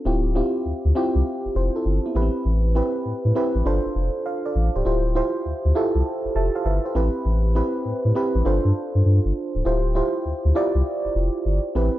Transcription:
0.05 D1 C4 E4 F4 G4
0.35 C4 E4 F4 G4
0.65 D2
0.85 D2
0.95 C4 E4 F4 G4
1.15 C2
1.45 F1
1.55 F1 G4 C5
1.76 E4 A4
1.85 G1
2.06 B3 E4
2.15 A1 B3 E4 G4 B4
2.22 C4
2.45 A1
2.75 C4 E4 G4 B4
3.05 A2
3.25 A2
3.35 C4 E4 G4 B4
3.55 A1
3.65 G1 D4 F4 A4 C5
3.85 F1
3.95 F1
4.26 C5 F5
4.46 A4 D5
4.55 A1
4.75 C#1 G4 C5
4.85 D1 E4 F4 G4 C5
5.15 E4 F4 G4 C5
5.45 D2
5.65 D2
5.75 E4 F4 G4 A4
5.95 C2
6.25 F1
6.35 F1 E5 A5
6.55 C5 F5
6.65 G1 B4 E5
6.85 G4 C5
6.95 A1 C4 E4 G4 B4
7.25 A1
7.55 C4 E4 G4 B4
7.85 A2
8.05 A2
8.15 C4 E4 G4 B4
8.35 A1
8.45 G1 D4 F4 A4 C5
8.65 G2
8.95 G2
9.05 G2
9.25 G1
9.55 C#1
9.65 D1 E4 F4 G4 C5
9.95 E4 F4 G4 C5
10.25 D2
10.45 D2
10.55 E4 F4 G4 D5
10.75 C2
11.05 F1
11.15 F1
11.45 G1
11.75 A1 C4 E4 G4 B4

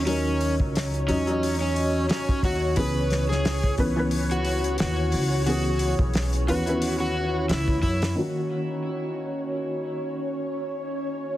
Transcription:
Already playing: D#2 F#3 C#4 D#4 C#5 D#5
0.06 F#3 C#4 D#4 A#4, open hi-hat
0.41 open hi-hat
0.60 C#2, kick
0.76 snare, open hi-hat
0.94 closed hi-hat
1.08 E2 F#3 C#4 D#4 D#5, open hi-hat
1.27 F#3 C#4 D#4 D#5, closed hi-hat
1.43 open hi-hat
1.61 C#4
1.76 open hi-hat
2.09 C#4, snare, open hi-hat
2.29 kick
2.43 D#2 F#4, kick, open hi-hat
2.76 C#2 E3 B3 C#4 G#4 B4, kick, open hi-hat
3.10 snare, open hi-hat
3.29 G#4, snare
3.45 snare, open hi-hat
3.64 kick
3.78 E3 B3 C#4 B4, kick, open hi-hat
3.96 E3 B3 C#4 B4
4.11 open hi-hat
4.31 F#4, closed hi-hat
4.45 open hi-hat
4.64 closed hi-hat
4.78 D#2 F#4, snare, open hi-hat
5.12 C#2, open hi-hat
5.46 E3 B3 C#4 F#4 G#4, open hi-hat
5.79 open hi-hat
5.99 B1, kick
6.14 snare, open hi-hat
6.33 closed hi-hat
6.48 D#2 E3 B3 C#4 F#4 B4, open hi-hat
6.66 B3 C#4 E4 B4, closed hi-hat
6.82 open hi-hat
7.00 F#4
7.49 C#2 E4, snare, open hi-hat
7.68 kick
7.83 F#2 E4, kick, open hi-hat
8.02 snare, open hi-hat
8.16 D#3 A#3 C#4 F#4 C#5

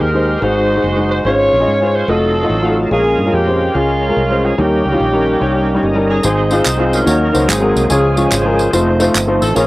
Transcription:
Already playing: G#2 G#3 D#4 G4 C5
0.00 D#2 D#4 G4 A#4
0.14 G#3 D#4 G4 C5
0.41 G#1 G#2 G#3 D#4 F#4 A#4 C5
0.48 C5
0.76 G#3 D#4 F#4 G#4
0.84 F#1
0.97 G#3 D#4 F#4 C5
1.11 C5
1.25 G#1 G#2 G#3 C#4 F4 B4 C5 C#5
1.30 C#5
1.52 A#1
1.60 G#3 C#4 F4 D#5
1.67 G#2
1.81 G#3 C#4 F4 C5
1.95 C5
2.08 F1 F#3 A3 C4 D#4 F4 F#4 G#4 A4 D#5
2.14 A4
2.43 A3 F4 F#4 D#5
2.50 A1
2.63 A3 F4 F#4 F5
2.91 A#1 A#2 G#3 C#4 F4 G#4 A#4
3.18 G2
3.26 G#3 C#4 F4 A#4
3.33 F2 C#4 G4
3.46 G#3 C#4 F4 C5
3.74 C#2 G#3 C#4 F4 G#4
4.09 G#3 C#4 F4 A#4
4.17 C2
4.30 G#3 C#4 F4 C5
4.45 G#4
4.58 D#2 D#3 G3 A#3 C#4 D#4 G4 A#4
4.85 C#2
4.92 G3 C#4 D#4 F4
5.00 A#1
5.13 G3 C#4 D#4 A#4
5.40 C2 G3 C#4 D#4 C#5
5.74 G3 C#4 D#4 C#5
5.83 G1 D#5
5.95 G3 C#4 D#4 A#4
6.10 G#4 A#5
6.23 G#1 G#2 G#3 C4 D#4 G#4 C5, tambourine
6.51 G#3 C4 D#4 F4 G#4 C5, tambourine
6.65 C2, clap, tambourine
6.78 G#3 C4 D#4 F4
6.92 C#4 F#4 A#4, tambourine
7.06 D#2 D#3 F#3 A#3 C#4 D#4 F#4 A#4 C#5, tambourine
7.32 C#2 A#3 D#4 F#4 C5, tambourine
7.48 G#1 G#2 F#3 A#3 C4 D#4 G#4, clap, tambourine
7.61 G#3 C4 F#4 A#4
7.76 C2, tambourine
7.89 C#2 C#3 F3 G#3 C#4 F4 G#4 C#5, tambourine
8.16 G#3 C#4 F4 C#5, tambourine
8.32 G#1 F4 G#4 C5, clap, tambourine
8.44 G#3 C#4 F4 A#4
8.59 tambourine
8.73 F1 F3 A3 C4 D#4 F4 C5, tambourine
9.00 A3 D#4 F4 C5, tambourine
9.15 G1, clap, tambourine
9.27 A3 D#4 F4 C5
9.41 A1 A4, tambourine
9.55 A#1 A#2 F3 A#3 C#4 F4 G#4 A#4 C#5, tambourine

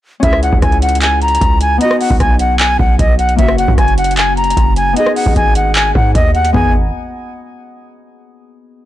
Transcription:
0.20 C#2 C#4 E4 E5, kick, closed hi-hat
0.26 G#4
0.33 cross-stick
0.43 F#5, closed hi-hat
0.53 C#2, kick
0.62 C#2 G#5, kick, cross-stick, closed hi-hat
0.72 closed hi-hat
0.82 F#5, closed hi-hat
0.89 closed hi-hat
0.95 closed hi-hat
1.01 G#5, clap, closed hi-hat
1.22 A#5, closed hi-hat
1.28 closed hi-hat
1.35 closed hi-hat
1.41 C#2, kick, closed hi-hat
1.61 G#5, closed hi-hat
1.78 B3 D#4 D#5, closed hi-hat
1.84 F#4
1.91 cross-stick
2.00 F#5, open hi-hat
2.10 B1, kick
2.20 B1 G#5, kick, cross-stick, closed hi-hat
2.39 F#5, closed hi-hat
2.59 G#5, clap, closed hi-hat
2.79 B1 F#5, kick
2.99 B1 D#5, kick, closed hi-hat
3.19 F#5, closed hi-hat
3.29 closed hi-hat
3.36 F#1 A#3 C#4 E5, kick, closed hi-hat
3.42 F#4
3.48 cross-stick
3.58 F#5, closed hi-hat
3.68 F#2, kick
3.78 F#1 G#5, kick, cross-stick, closed hi-hat
3.88 closed hi-hat
3.98 F#5, closed hi-hat
4.04 closed hi-hat
4.11 closed hi-hat
4.17 G#5, clap, closed hi-hat
4.37 A#5, closed hi-hat
4.44 closed hi-hat
4.50 closed hi-hat
4.57 F#1, kick, closed hi-hat
4.76 G#5, closed hi-hat
4.93 B3 D#4, closed hi-hat
4.97 G#4 D#5
5.06 cross-stick
5.16 F#5, open hi-hat
5.26 G#1, kick
5.36 G#1 G#5, kick, closed hi-hat
5.55 F#5, closed hi-hat
5.75 G#5, clap, closed hi-hat
5.95 G#2 F#5, kick
6.15 D#2 D#5, kick, closed hi-hat
6.35 F#5, closed hi-hat
6.45 closed hi-hat
6.53 G#1 B3 D#4 G#4 G#5, kick, floor tom

